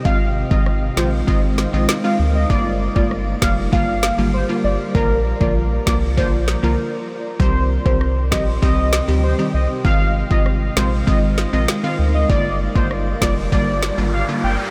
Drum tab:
SD |----r-o---o-o---|----r-o---o-----|------o---o-----|----r-o---o-----|
BD |o--o----o-------|o--o--o-o-------|o--o--o-o-------|o--o--o-o-------|

SD |----r-o---o-o---|----r-o---o-----|
BD |o--o----o-------|o--o--o-o-------|